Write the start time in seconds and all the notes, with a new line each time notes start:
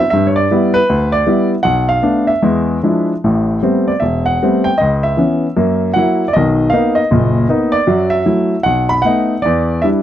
0.10 G2 E5
0.27 C#5
0.36 D5
0.51 G3 B3 E4
0.74 B4
0.89 D2
1.12 D5
1.27 G3 B3 E4
1.63 B1 F#5
1.89 F5
2.02 A3 B3 D4
2.27 E5
2.42 E2 G#3
2.83 F3 G#3 D4 E4
3.24 A1 A2
3.63 G3 A3 B3 C4
3.88 D5
4.00 E1 E5
4.26 F#5
4.42 G3 A3 B3 C4
4.64 G5
4.78 C#2 D#5
5.03 E5
5.17 E3 B3 C#4
5.57 F#2 A#3
5.94 F#3 A#3 E4 F#5
6.28 D5
6.33 B1 D#3 D#5
6.70 A#3 B3 D#4 F5
6.95 D#5
7.11 F#1 A#2
7.49 A#3 B3 D#4
7.72 D5
7.87 F#2 F#3
8.10 E5
8.26 F#3 A3 E4
8.63 B1 F#5
8.89 B5
9.02 A3 B3 D#4 F#5
9.42 E2 D5
9.82 G3 D4 E4 E5